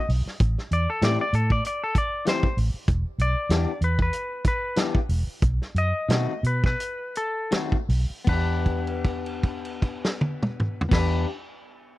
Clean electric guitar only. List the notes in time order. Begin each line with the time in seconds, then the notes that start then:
1.02 E3 A3 C4 G4
2.25 E3 A3 C4 G4
3.50 E3 B3 D4 G4
4.76 E3 B3 D4 G4
6.08 D#3 A3 C4 F#4
7.51 D#3 A3 C4 F#4
8.25 B3
8.29 D4 G4
10.89 B3
10.93 D4 G4